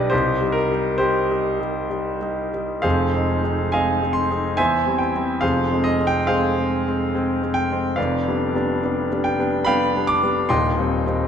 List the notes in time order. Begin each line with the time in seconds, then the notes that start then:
Already playing: B1 G3 D4 G4 B4 D5 D#5
0.10 C2 D#4 G4 C5
0.41 G3 D#4
0.52 A#4
0.71 G3 D#4
0.98 G3 D#4 G4 C5
1.31 G3 D#4
1.60 G3 D#4
1.89 G3 D#4
2.22 G3 D#4
2.54 G3 D#4
2.82 F1 F2 G#4 C5 F5
3.14 G#3 C4 D#4
3.44 G#3 C4 D#4
3.72 G#3 C4 D#4 D#5 F5 G#5
4.02 G#3 C4 D#4
4.13 C6
4.31 G#3 C4 D#4
4.57 E2 C5 E5 G#5
4.86 G3 C4 E4
4.98 G5
5.15 G3 C4 E4
5.41 F1 F2 G#4 C5 F5
5.72 G#3 C4
5.84 D#5
6.00 G#3 C4
6.07 G5
6.27 G#3 C4 G#4 C5 F5
6.58 G#3 C4
6.88 G#3 C4
7.15 G#3 C4
7.42 G#3 C4
7.54 G5
7.72 G#3 C4
7.96 F1 F2 B4 D5 F5
8.28 G3 B3 D4
8.55 G3 B3 D4
8.83 G3 B3 D4
9.12 G3 B3 D4
9.24 G5
9.39 G3 B3 D4
9.65 G3 B3 D4 F5 G5 B5
9.96 G3 B3 D4
10.07 D6
10.23 G3 B3 D4
10.49 D#1 D#2 D#5 G5 C6
10.79 G3 C4 D#4
11.06 G3 C4 D#4